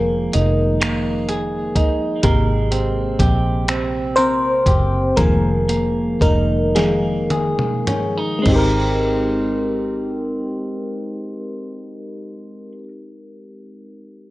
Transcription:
Already playing: F1 D#3 F3 G#3 A#3 G#4 A#4
0.33 F1 D#4, closed hi-hat
0.81 A#3, finger snap, closed hi-hat
1.28 G#4, closed hi-hat
1.76 D#4, kick, closed hi-hat
2.23 G#1 C3 G#3 A#3 G4 A#4, kick, closed hi-hat
2.71 C4, closed hi-hat
3.19 A#1 G4, kick, closed hi-hat
3.68 C4, finger snap, closed hi-hat
4.16 C4 A#4 C5, closed hi-hat
4.66 F#1 G4, kick, closed hi-hat
5.17 F1 D#3 F3 G#3 A#3 G#4 A#4, kick, closed hi-hat
5.69 A#3, closed hi-hat
6.21 F1 A#3 D#4 A#4, kick, closed hi-hat
6.75 D#3 F3 G#3 A#3 G#4, snare, closed hi-hat
7.30 G#4, closed hi-hat, high tom
7.59 mid tom
7.87 C#4, closed hi-hat, mid tom
8.17 D#4
8.39 G#3
8.43 G#1 C4, kick, crash
8.47 C4 D#4
8.52 G4
8.56 A#4

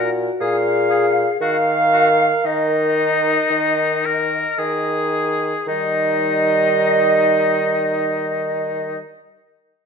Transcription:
Already playing: A#2 F#4
0.40 A#2 G#4 F5
0.90 G#4
1.41 D#3 F#4 A#4 F5
1.93 F#4
2.45 D#3 D#4 D#5
3.50 D#3
4.05 A#4
4.58 D#3 G#4
5.67 D#3 G3 D#4 D#5

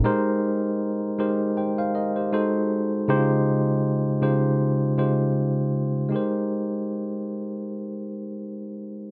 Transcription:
0.04 G#3 D#4 G4 A#4 C5
1.19 G#3 D#4 G4 A#4 C5
1.57 C5 G5
1.78 C5 F5
1.95 A#4 D#5
2.16 G4 C5
2.33 G#3 D#4 F#4 A4 C5
3.08 C#3 G#3 D#4 E4 G4 C5
3.16 F4
4.21 C#3 G#3 D#4 F4 G4 C5
4.98 C#3 G#3 D#4 F4 G4 C5
6.09 G#3 D#4 G4
6.14 A#4 C5

